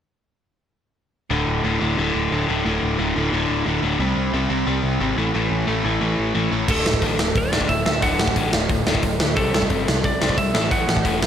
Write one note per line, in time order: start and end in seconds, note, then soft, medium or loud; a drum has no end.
1.30 1.44 D1 medium
1.30 1.64 D2 medium
1.30 1.64 A2 medium
1.30 1.65 D3 loud
1.47 1.60 D1 medium
1.64 1.77 D1 medium
1.64 1.81 D2 medium
1.64 1.80 A2 medium
1.64 1.80 D3 loud
1.81 1.94 D1 medium
1.81 1.97 D2 medium
1.81 1.98 A2 medium
1.81 1.98 D3 medium
1.97 2.11 D1 medium
1.97 2.30 D2 medium
1.97 2.31 A2 loud
1.97 2.31 D3 loud
2.15 2.28 D1 medium
2.31 2.44 D1 medium
2.31 2.48 D2 medium
2.31 2.48 A2 medium
2.31 2.47 D3 medium
2.49 2.62 D1 medium
2.49 2.64 D2 medium
2.49 2.64 A2 medium
2.49 2.65 D3 loud
2.65 2.78 D1 medium
2.65 2.97 D2 medium
2.65 2.98 A2 loud
2.65 2.98 D3 loud
2.83 2.95 D1 medium
2.99 3.12 D1 medium
2.99 3.16 D2 medium
2.99 3.15 A2 medium
2.99 3.15 D3 loud
3.16 3.29 D1 medium
3.16 3.31 D2 medium
3.16 3.32 A2 medium
3.16 3.32 D3 medium
3.32 3.45 D1 loud
3.32 3.65 D2 medium
3.32 3.65 A2 loud
3.32 3.66 D3 loud
3.49 3.62 D1 medium
3.66 3.79 D1 medium
3.66 3.82 D2 medium
3.66 3.82 A2 medium
3.66 3.82 D3 medium
3.83 3.96 D1 medium
3.83 3.99 D2 medium
3.83 3.99 A2 medium
3.83 3.99 D3 loud
3.99 4.12 C2 medium
3.99 4.32 C3 medium
3.99 4.33 G3 loud
3.99 4.33 C4 medium
4.16 4.29 C2 medium
4.33 4.46 C2 medium
4.33 4.49 C3 medium
4.33 4.49 G3 medium
4.33 4.48 C4 medium
4.50 4.63 C2 medium
4.50 4.66 C3 medium
4.50 4.66 G3 medium
4.50 4.66 C4 medium
4.67 4.80 C2 loud
4.67 4.99 C3 medium
4.67 5.00 G3 loud
4.67 5.00 C4 loud
4.84 4.96 C2 medium
5.00 5.13 G#1 medium
5.00 5.17 C3 medium
5.00 5.17 G3 medium
5.00 5.17 C4 medium
5.17 5.30 A1 medium
5.17 5.34 A2 medium
5.17 5.34 E3 loud
5.17 5.33 A3 loud
5.34 5.47 A1 medium
5.34 5.67 A2 medium
5.34 5.67 E3 loud
5.34 5.66 A3 loud
5.50 5.64 A1 medium
5.67 5.81 A1 medium
5.67 5.83 A2 medium
5.67 5.84 E3 medium
5.67 5.84 A3 medium
5.84 5.97 A1 medium
5.84 6.01 A2 medium
5.84 6.01 E3 medium
5.84 6.00 A3 medium
6.01 6.14 A1 medium
6.01 6.35 A2 medium
6.01 6.34 E3 medium
6.01 6.34 A3 loud
6.18 6.31 A1 medium
6.35 6.48 A1 medium
6.35 6.50 A2 medium
6.35 6.51 E3 medium
6.35 6.51 A3 medium
6.51 6.64 A1 medium
6.51 6.67 A2 medium
6.51 6.68 E3 medium
6.51 6.68 A3 loud
6.68 6.83 D1 medium
6.68 6.84 D2 medium
6.68 6.84 A2 loud
6.68 6.85 D3 loud
6.68 7.39 A4 medium
6.68 kick loud
6.68 crash loud
6.86 7.00 D1 medium
6.86 7.01 D2 medium
6.86 7.01 A2 medium
6.86 snare loud
6.94 kick medium
7.02 7.16 A1 medium
7.02 7.18 D2 medium
7.02 7.18 A2 loud
7.02 7.19 D3 loud
7.02 kick loud
7.02 open hi-hat medium
7.19 7.33 D1 medium
7.19 7.34 D2 medium
7.19 7.35 A2 medium
7.19 snare loud
7.35 7.50 D1 loud
7.35 7.51 D2 medium
7.35 7.51 A2 medium
7.35 7.71 D5 loud
7.35 kick loud
7.35 open hi-hat medium
7.52 7.67 D1 medium
7.52 7.68 D2 medium
7.52 7.69 A2 medium
7.52 7.69 D3 loud
7.52 snare loud
7.61 kick medium
7.69 7.83 D1 medium
7.69 7.84 D2 medium
7.69 7.85 A2 medium
7.69 8.02 E5 loud
7.69 kick medium
7.69 open hi-hat medium
7.86 8.01 D2 medium
7.86 8.00 D2 medium
7.86 8.01 A2 medium
7.86 snare loud
8.02 8.17 D1 loud
8.02 8.18 D2 medium
8.02 8.19 A2 loud
8.02 8.19 D3 loud
8.02 8.66 F#5 loud
8.02 kick loud
8.02 open hi-hat medium
8.19 8.34 D1 medium
8.19 8.35 D2 medium
8.19 8.35 A2 medium
8.19 snare loud
8.28 kick medium
8.36 8.50 A1 medium
8.36 8.52 D2 loud
8.36 8.53 A2 loud
8.36 8.53 D3 loud
8.36 kick loud
8.36 open hi-hat medium
8.53 8.67 D1 medium
8.53 8.69 D2 medium
8.53 8.69 A2 medium
8.53 snare loud
8.69 8.84 D1 loud
8.69 8.85 D2 medium
8.69 8.86 A2 medium
8.69 kick loud
8.69 open hi-hat medium
8.86 9.01 D1 medium
8.86 9.03 D2 medium
8.86 9.03 A2 loud
8.86 9.03 D3 loud
8.86 snare loud
8.95 kick medium
9.03 9.17 D1 loud
9.03 9.19 D2 medium
9.03 9.19 A2 medium
9.03 kick loud
9.03 open hi-hat medium
9.20 9.36 D2 medium
9.20 9.35 D2 medium
9.20 9.36 A2 medium
9.20 snare loud
9.36 9.51 C2 medium
9.36 9.53 C3 medium
9.36 9.53 G3 medium
9.36 9.54 C4 loud
9.36 10.06 A4 medium
9.36 kick loud
9.36 open hi-hat medium
9.54 9.68 C2 medium
9.54 9.69 C3 medium
9.54 9.69 G3 medium
9.54 snare loud
9.62 kick medium
9.70 9.85 G1 medium
9.70 9.86 C3 loud
9.70 9.87 G3 loud
9.70 9.87 C4 medium
9.70 kick medium
9.70 open hi-hat medium
9.88 10.02 C2 medium
9.88 10.03 C3 medium
9.88 10.03 G3 medium
9.88 snare loud
10.04 10.18 C2 loud
10.04 10.20 C3 medium
10.04 10.20 G3 medium
10.04 10.39 D5 medium
10.04 kick loud
10.04 open hi-hat medium
10.21 10.36 C2 medium
10.21 10.37 C3 medium
10.21 10.37 G3 medium
10.21 10.38 C4 medium
10.21 snare loud
10.29 kick medium
10.37 10.52 C2 medium
10.37 10.53 C3 medium
10.37 10.54 G3 medium
10.37 10.71 E5 loud
10.37 kick loud
10.37 open hi-hat medium
10.54 10.69 A1 medium
10.54 10.70 A2 loud
10.54 10.70 E3 medium
10.54 10.70 A3 loud
10.54 snare loud
10.71 10.86 A1 medium
10.71 10.87 A2 loud
10.71 10.87 E3 medium
10.71 10.87 A3 loud
10.71 11.27 F#5 loud
10.71 kick loud
10.71 open hi-hat medium
10.88 11.02 A1 medium
10.88 11.03 A2 medium
10.88 11.03 E3 medium
10.88 snare loud
10.97 kick medium
11.05 11.19 E1 medium
11.05 11.20 A2 medium
11.05 11.20 E3 medium
11.05 11.21 A3 loud
11.05 kick loud
11.05 open hi-hat medium
11.21 11.27 A1 medium
11.21 11.27 A2 medium
11.21 11.27 E3 medium
11.21 snare loud